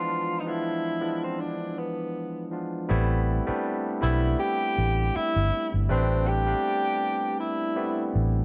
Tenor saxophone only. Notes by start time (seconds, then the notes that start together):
Already playing: F4
0.40 D#4
0.48 E4
1.24 C4
1.40 D4
1.78 B3
4.02 E4
4.40 G4
5.16 E4
5.90 C4
6.27 G4
7.40 E4